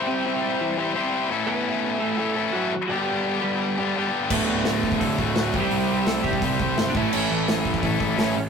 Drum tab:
CC |----------------|----------------|----------------|x---------------|
HH |----------------|----------------|----------------|----o---o---o---|
SD |----------------|----------------|----------------|----o-------o---|
BD |----------------|----------------|----------------|o-----ooo-o---o-|

CC |----------------|x---------------|
HH |o---o---o---o---|----o---o---o---|
SD |----o-------o---|----o-------o---|
BD |------ooo-o---o-|------ooo-o-----|